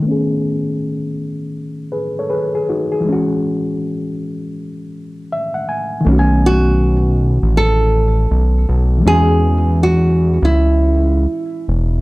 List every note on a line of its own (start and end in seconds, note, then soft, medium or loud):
0.00 2.99 D#3 medium
0.00 3.00 A3 medium
0.06 3.02 B3 medium
0.06 3.03 C#4 medium
0.11 1.91 G#4 medium
1.92 2.16 G#4 soft
1.92 2.16 B4 medium
2.19 2.31 A4 medium
2.19 2.31 C#5 medium
2.30 2.54 G#4 medium
2.30 2.53 B4 medium
2.55 2.68 G#4 medium
2.69 2.92 D#4 medium
2.69 2.92 F#4 medium
2.92 3.28 G#4 medium
3.01 5.99 E3 medium
3.05 6.01 G#3 medium
3.09 6.03 C#4 medium
3.09 6.05 F#4 medium
5.32 5.54 E5 medium
5.54 5.67 F#5 medium
5.69 6.03 G#5 medium
6.01 8.99 D#3 medium
6.05 7.39 B1 loud
6.05 9.01 A3 medium
6.05 9.03 C#4 medium
6.13 6.18 F#4 medium
6.19 9.08 G#5 medium
6.46 7.57 F#4 loud
7.43 8.27 A1 medium
7.57 9.03 A4 loud
8.31 8.66 B1 medium
8.69 9.03 B1 medium
8.98 11.98 E3 medium
8.98 12.00 G#3 medium
9.05 10.39 E2 loud
9.05 12.01 C#4 medium
9.05 9.83 G#4 loud
9.10 12.01 F#4 medium
9.83 10.46 F#4 medium
10.42 11.27 C#2 loud
10.42 11.66 E4 medium
11.68 12.01 E1 medium